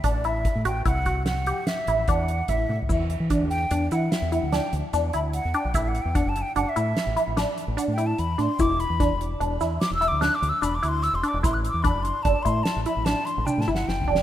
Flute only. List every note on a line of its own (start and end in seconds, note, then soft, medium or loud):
0.05 0.27 D5 medium
0.25 0.65 E5 medium
0.66 0.85 G5 medium
0.86 1.24 F#5 medium
1.27 1.69 F#5 medium
1.67 2.10 E5 medium
2.09 2.51 F#5 medium
2.49 2.80 E5 medium
3.50 3.88 G5 medium
3.92 4.13 F#5 medium
4.12 4.33 E5 medium
4.32 4.54 F#5 medium
4.53 4.73 G5 medium
5.13 5.19 B5 medium
5.34 5.56 F#5 medium
5.54 5.76 G5 medium
5.74 5.90 E5 medium
5.88 6.04 F#5 medium
6.02 6.17 G5 medium
6.15 6.30 F#5 medium
6.29 6.43 A5 medium
6.42 6.55 G5 medium
6.56 6.71 F#5 medium
6.69 7.30 E5 medium
7.78 7.84 F#5 medium
7.93 8.08 G5 medium
8.06 8.21 A5 medium
8.19 8.42 B5 medium
8.41 8.63 C6 medium
8.61 8.82 D6 loud
8.80 9.21 B5 medium
9.81 9.94 D6 medium
9.94 10.10 E6 loud
10.08 10.23 D6 loud
10.22 10.36 F#6 loud
10.35 10.51 D6 medium
10.49 10.64 E6 medium
10.62 10.77 B5 medium
10.75 10.90 D6 loud
10.89 11.05 C6 loud
11.03 11.17 E6 loud
11.15 11.30 C6 medium
11.28 11.41 D6 medium
11.42 11.55 C6 medium
11.54 11.56 F#6 medium
11.69 11.84 D6 medium
11.83 12.05 B5 medium
12.03 12.24 C6 medium
12.23 12.44 A5 medium
12.43 12.65 C6 medium
12.63 12.84 A5 medium
12.85 13.07 B5 medium
13.05 13.27 A5 medium
13.25 13.47 C6 medium
13.46 13.62 G5 medium
13.61 13.73 A5 medium
13.74 13.89 F#5 medium
13.88 14.23 G5 medium